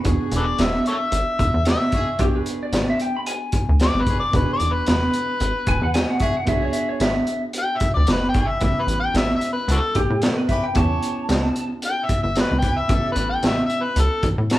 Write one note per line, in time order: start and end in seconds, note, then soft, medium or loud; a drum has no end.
0.04 0.18 E1 loud
0.04 2.14 B3 medium
0.04 2.15 D4 medium
0.04 0.59 D4 medium
0.04 0.59 F#4 medium
0.04 2.16 F#4 medium
0.04 0.59 G#4 medium
0.04 kick medium
0.04 closed hi-hat medium
0.08 2.16 G#4 medium
0.32 0.54 E1 medium
0.32 closed hi-hat medium
0.37 0.44 A4 medium
0.37 0.45 B4 medium
0.37 0.64 D5 medium
0.58 0.81 E1 medium
0.58 0.87 E5 medium
0.58 snare loud
0.58 closed hi-hat medium
0.86 0.94 A4 medium
0.86 0.96 C#5 medium
0.86 1.65 E5 medium
0.86 closed hi-hat medium
1.12 1.24 G#1 loud
1.12 closed hi-hat medium
1.39 1.51 E1 loud
1.39 kick medium
1.39 closed hi-hat medium
1.54 1.76 E2 medium
1.65 snare loud
1.65 closed hi-hat medium
1.70 2.20 E5 medium
1.92 2.08 D4 medium
1.92 2.08 F#4 medium
1.92 2.09 G#4 medium
1.92 kick medium
1.92 closed hi-hat medium
2.19 2.41 B1 loud
2.19 4.29 B3 medium
2.19 2.73 D4 medium
2.19 4.30 D4 soft
2.19 2.73 F#4 medium
2.19 4.30 F#4 soft
2.19 2.34 G4 loud
2.19 2.73 G#4 medium
2.19 4.31 G#4 medium
2.19 kick medium
2.19 closed hi-hat medium
2.35 2.61 B4 medium
2.46 closed hi-hat medium
2.63 2.88 D5 medium
2.73 2.94 G#1 loud
2.73 snare loud
2.73 closed hi-hat medium
2.90 3.00 E5 medium
3.00 3.15 G5 medium
3.00 closed hi-hat medium
3.17 3.26 B5 medium
3.26 3.67 G#5 medium
3.26 closed hi-hat medium
3.52 kick medium
3.52 closed hi-hat medium
3.69 3.90 D2 medium
3.80 4.03 D5 medium
3.80 snare loud
3.80 closed hi-hat medium
3.94 4.26 G#1 loud
4.01 4.17 B4 medium
4.06 4.22 D4 medium
4.06 4.22 F#4 medium
4.06 4.23 G#4 medium
4.06 kick medium
4.06 closed hi-hat medium
4.20 4.35 D5 medium
4.32 4.46 E1 loud
4.32 6.43 B3 medium
4.32 4.87 D4 medium
4.32 6.43 D4 medium
4.32 4.87 F#4 medium
4.32 6.44 F#4 medium
4.32 4.87 G#4 medium
4.32 kick loud
4.32 closed hi-hat medium
4.36 6.45 G#4 medium
4.36 4.52 B4 medium
4.53 4.74 D5 medium
4.60 4.82 E1 medium
4.60 closed hi-hat medium
4.72 4.88 B4 medium
4.87 5.09 E1 medium
4.87 5.92 B4 loud
4.87 snare loud
4.87 closed hi-hat medium
5.13 closed hi-hat medium
5.40 5.53 G#1 loud
5.40 closed hi-hat medium
5.67 5.79 E1 medium
5.67 5.82 G#5 medium
5.67 kick medium
5.67 closed hi-hat medium
5.82 6.04 E2 medium
5.82 5.94 F#5 medium
5.94 6.09 G#5 medium
5.94 snare loud
5.94 closed hi-hat medium
6.10 6.21 F#5 medium
6.20 6.35 D4 medium
6.20 6.35 F#4 medium
6.20 6.35 G#4 medium
6.20 6.36 E5 medium
6.20 kick medium
6.20 closed hi-hat medium
6.37 6.48 F#5 medium
6.46 6.69 B1 medium
6.46 8.57 B3 medium
6.46 7.00 D4 medium
6.46 8.57 D4 medium
6.46 7.01 F#4 medium
6.46 8.58 F#4 medium
6.46 7.01 G#4 medium
6.46 8.59 G#4 medium
6.46 6.62 E5 medium
6.46 kick loud
6.46 closed hi-hat medium
6.62 6.74 C#5 medium
6.73 6.88 E5 medium
6.73 closed hi-hat medium
6.89 7.00 C#5 medium
7.00 7.22 G#1 loud
7.00 7.42 E5 medium
7.00 snare loud
7.00 closed hi-hat medium
7.27 closed hi-hat medium
7.53 closed hi-hat medium
7.59 7.78 G5 medium
7.77 7.92 E5 medium
7.77 closed hi-hat medium
7.81 kick medium
7.94 8.06 D2 medium
7.94 8.10 D5 medium
8.07 8.32 F#1 medium
8.07 snare loud
8.07 closed hi-hat medium
8.12 8.27 B4 medium
8.29 8.49 G5 medium
8.34 8.59 G#1 medium
8.34 8.50 D4 medium
8.34 8.50 F#4 medium
8.34 8.50 G#4 medium
8.34 kick medium
8.34 closed hi-hat medium
8.47 8.63 E5 medium
8.60 8.74 A1 loud
8.60 10.71 B3 medium
8.60 9.15 C#4 medium
8.60 10.72 C#4 medium
8.60 10.72 E4 medium
8.60 9.15 G4 medium
8.60 10.73 G4 medium
8.60 9.15 B4 medium
8.60 8.84 E5 medium
8.60 kick loud
8.60 closed hi-hat medium
8.82 8.98 B4 medium
8.87 9.09 A1 loud
8.87 closed hi-hat medium
9.00 9.16 G5 medium
9.14 9.36 A1 loud
9.14 9.34 E5 medium
9.14 snare loud
9.14 closed hi-hat medium
9.36 9.52 E5 medium
9.41 closed hi-hat medium
9.53 9.69 B4 medium
9.68 9.80 C#2 loud
9.68 9.77 D4 medium
9.68 9.79 F#4 medium
9.68 9.96 A4 loud
9.68 closed hi-hat medium
9.95 10.08 A1 loud
9.95 10.22 G4 medium
9.95 kick medium
9.95 closed hi-hat medium
10.10 10.32 A2 medium
10.22 10.37 A4 medium
10.22 snare loud
10.22 closed hi-hat medium
10.37 10.49 B4 medium
10.49 10.64 C#4 medium
10.49 10.65 G4 medium
10.49 10.64 B4 medium
10.49 10.63 E5 medium
10.49 kick medium
10.49 closed hi-hat medium
10.64 10.75 G5 medium
10.74 10.98 E2 loud
10.74 12.85 B3 medium
10.74 11.28 C#4 medium
10.74 12.85 C#4 medium
10.74 12.86 E4 medium
10.74 11.28 G4 medium
10.74 11.29 C#5 loud
10.74 11.69 A5 medium
10.74 kick loud
10.74 closed hi-hat medium
10.78 12.87 G4 medium
11.03 closed hi-hat medium
11.29 11.51 C#2 loud
11.29 snare loud
11.29 closed hi-hat medium
11.56 closed hi-hat medium
11.82 12.06 G5 loud
11.82 closed hi-hat medium
12.05 12.20 E5 medium
12.09 kick medium
12.09 closed hi-hat medium
12.23 12.46 G1 medium
12.23 12.38 E5 medium
12.36 snare loud
12.36 closed hi-hat medium
12.41 12.56 B4 medium
12.52 12.83 C#2 medium
12.59 12.77 C#4 medium
12.59 12.78 G4 medium
12.59 12.74 G5 medium
12.59 closed hi-hat medium
12.63 12.78 B4 medium
12.63 kick medium
12.77 12.92 E5 medium
12.88 13.02 A1 loud
12.88 14.59 B3 medium
12.88 13.43 C#4 medium
12.88 14.59 C#4 medium
12.88 14.59 E4 medium
12.88 13.43 G4 medium
12.88 14.59 G4 medium
12.88 13.43 A4 medium
12.88 kick loud
12.88 closed hi-hat medium
12.94 13.09 E5 medium
13.12 13.27 B4 medium
13.16 13.38 A1 medium
13.16 closed hi-hat medium
13.30 13.48 G5 medium
13.43 13.65 A1 medium
13.43 13.62 E5 medium
13.43 snare loud
13.43 closed hi-hat medium
13.66 13.84 E5 medium
13.66 closed hi-hat medium
13.83 14.02 B4 medium
13.96 14.09 C#2 loud
13.96 closed hi-hat medium
14.00 14.25 A4 medium
14.23 14.35 A1 medium
14.23 kick medium
14.23 closed hi-hat medium
14.38 14.59 A2 medium
14.50 snare loud
14.50 closed hi-hat medium
14.54 14.59 B5 loud